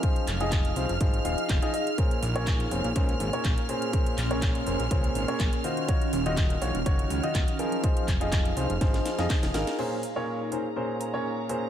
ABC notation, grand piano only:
X:1
M:4/4
L:1/16
Q:"Swing 16ths" 1/4=123
K:Bbm
V:1 name="Grand piano"
[F,EFAc]2 z [F,EFAe]3 [F,EFAc] z [F,EFAc]2 [F,EFAf]3 [F,EFAe] [EFAe] z | [B,,DABc]2 z [B,,DABd]3 [B,,DABc] z [B,,DABc]3 [B,,DABd]3 [B,,DABc]2 | [B,,DABc]2 z [B,,DABd]3 [B,,DABc] z [B,,DABc]3 [B,,DABd]3 [E,EFGc]2 | [E,EFGd]2 z [E,EFGe]3 [E,EFGd] z [E,EFGd]3 [E,EFGe]3 [F,EFAB]2 |
[F,EFAc]2 z [F,EFAe]3 [F,EFAc] z [F,EFAc]3 [F,EFAe]3 [EFAB]2 | [B,,DABc]2 z [B,,DABd]3 [B,,DABc] z [B,,DABc]3 [B,,DABd]3 [B,,DABc]2 |]